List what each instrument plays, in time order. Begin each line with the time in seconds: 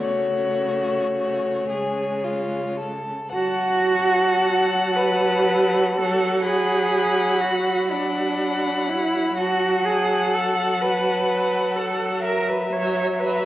0.01 cello C#3, viola A3, violin F#4 C#5
1.70 cello C#3, viola G#3, violin G#4
2.24 violin F4
2.80 violin A4
3.32 viola F#3, cello F#4, violin F#5 A5
4.96 cello B4
5.97 cello A4
6.43 cello G#4, violin F#5 B5
7.40 cello F#4
7.90 cello D4, violin F#5 B5
8.88 cello E4
9.35 viola F#3, cello F#4, violin F#5 A5
9.85 cello G#4
10.33 cello A4
10.81 cello B4
11.76 cello A4
12.24 cello A#4, violin E5 A#5
12.48 cello B4
12.72 cello C#5
13.20 cello B4